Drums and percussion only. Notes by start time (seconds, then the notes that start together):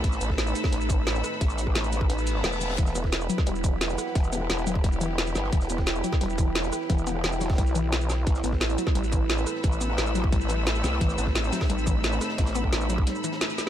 0.04 kick, closed hi-hat
0.12 snare, shaker
0.21 closed hi-hat, shaker
0.30 kick, cross-stick, snare
0.38 snare, closed hi-hat
0.47 shaker
0.55 snare, closed hi-hat, shaker
0.64 kick, cross-stick, snare, closed hi-hat
0.67 snare, closed hi-hat
0.72 closed hi-hat
0.81 shaker
0.89 kick, closed hi-hat, shaker
1.07 snare, closed hi-hat
1.15 snare, shaker
1.24 cross-stick, closed hi-hat, shaker
1.32 snare
1.41 kick, closed hi-hat
1.50 shaker
1.58 closed hi-hat, shaker
1.67 kick, cross-stick
1.75 snare, closed hi-hat
1.84 shaker
1.93 closed hi-hat, shaker
2.01 kick, cross-stick
2.09 closed hi-hat
2.18 shaker
2.27 closed hi-hat, shaker
2.36 snare
2.43 snare, closed hi-hat
2.53 shaker
2.61 closed hi-hat, shaker
2.70 snare, closed hi-hat
2.78 kick, closed hi-hat
2.87 snare, shaker
2.95 closed hi-hat, shaker
3.04 kick, cross-stick, snare
3.12 snare, closed hi-hat
3.21 shaker
3.30 closed hi-hat, shaker
3.38 kick, cross-stick, snare
3.46 closed hi-hat
3.55 shaker
3.64 kick, closed hi-hat, shaker
3.81 snare, closed hi-hat
3.89 snare, shaker
3.98 cross-stick, closed hi-hat, shaker
4.07 snare
4.15 kick, closed hi-hat
4.24 shaker
4.33 closed hi-hat, shaker
4.41 cross-stick
4.50 snare, closed hi-hat
4.58 shaker
4.67 closed hi-hat, shaker
4.75 kick
4.84 kick, closed hi-hat
4.93 shaker
5.01 closed hi-hat, shaker
5.18 snare, closed hi-hat
5.27 snare, shaker
5.35 snare, closed hi-hat, shaker
5.44 snare
5.52 kick, closed hi-hat
5.61 snare, shaker
5.69 closed hi-hat, shaker
5.78 kick, cross-stick, snare
5.86 snare, closed hi-hat
5.95 shaker
6.04 closed hi-hat, shaker
6.13 kick, cross-stick, snare
6.21 closed hi-hat
6.30 shaker
6.38 kick, closed hi-hat, shaker
6.55 snare, closed hi-hat
6.64 snare, shaker
6.73 cross-stick, closed hi-hat, shaker
6.81 snare
6.90 kick, closed hi-hat
6.98 shaker
7.07 closed hi-hat, shaker
7.15 cross-stick
7.24 snare, closed hi-hat
7.33 shaker
7.40 snare, closed hi-hat, shaker
7.50 kick, snare, closed hi-hat
7.54 snare, closed hi-hat
7.58 kick, closed hi-hat
7.66 snare, shaker
7.75 closed hi-hat, shaker
7.92 snare, closed hi-hat
8.01 shaker
8.10 snare, closed hi-hat, shaker
8.26 kick, closed hi-hat
8.35 snare, shaker
8.44 closed hi-hat, shaker
8.52 kick, cross-stick, snare
8.60 snare, closed hi-hat
8.70 shaker
8.78 closed hi-hat, shaker
8.87 kick, cross-stick, snare
8.95 closed hi-hat
9.04 shaker
9.12 kick, closed hi-hat, shaker
9.29 snare, closed hi-hat
9.38 snare, shaker
9.46 cross-stick, closed hi-hat, shaker
9.55 snare
9.63 kick, closed hi-hat
9.72 shaker
9.81 closed hi-hat, shaker
9.90 cross-stick
9.97 snare, closed hi-hat
10.07 shaker
10.15 closed hi-hat, shaker
10.24 kick
10.32 kick, closed hi-hat
10.41 shaker
10.48 closed hi-hat, shaker
10.66 snare, closed hi-hat
10.75 snare, shaker
10.84 snare, closed hi-hat, shaker
10.93 snare
11.01 kick, closed hi-hat
11.10 snare, shaker
11.18 closed hi-hat, shaker
11.26 kick, cross-stick, snare
11.35 snare, closed hi-hat
11.44 shaker
11.53 snare, closed hi-hat, shaker
11.61 kick, cross-stick, snare, closed hi-hat
11.65 snare, closed hi-hat
11.69 closed hi-hat
11.78 shaker
11.87 kick, closed hi-hat, shaker
12.03 snare, closed hi-hat
12.12 snare, shaker
12.21 cross-stick, snare, closed hi-hat, shaker
12.30 snare, closed hi-hat
12.38 kick, snare, closed hi-hat
12.46 snare, closed hi-hat, shaker
12.55 closed hi-hat, shaker
12.64 kick, cross-stick
12.72 snare, closed hi-hat
12.81 shaker
12.90 closed hi-hat, shaker
12.98 kick, cross-stick
13.07 snare, closed hi-hat
13.15 shaker
13.24 closed hi-hat, shaker
13.32 snare, closed hi-hat
13.41 snare, closed hi-hat
13.50 closed hi-hat, shaker
13.58 snare, closed hi-hat, shaker
13.66 snare